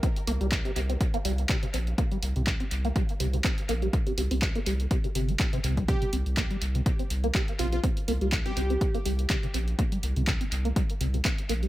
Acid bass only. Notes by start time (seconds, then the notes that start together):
0.03 C4
0.27 A#3
0.41 G3
0.65 C3
0.76 C3
0.90 C4
1.14 A#3
1.25 G3
1.49 C3
1.63 C3
1.74 C4
1.98 A#3
2.12 G3
2.36 C3
2.47 C3
2.60 C4
2.85 A#3
2.96 G3
3.20 C3
3.34 C3
3.45 C4
3.69 A#3
3.82 G3
4.07 C3
4.18 C3
4.31 C4
4.55 A#3
4.66 G3
4.91 C3
5.04 C3
5.15 C3
5.29 C4
5.40 C3
5.53 C3
5.64 C3
5.77 G3
5.88 C3
6.02 C3
6.13 C4
6.37 A#3
6.51 G3
6.75 C3
6.86 C3
6.99 C4
7.24 A#3
7.35 G3
7.59 C3
7.73 C3
7.84 C4
8.08 A#3
8.21 G3
8.46 C3
8.57 C3
8.70 C4
8.95 A#3
9.06 G3
9.30 C3
9.43 C3
9.54 C4
9.79 A#3
9.92 G3
10.16 C3
10.27 C3
10.41 C4
10.65 A#3
10.76 G3
11.01 C3
11.14 C3
11.25 C4
11.49 A#3
11.63 G3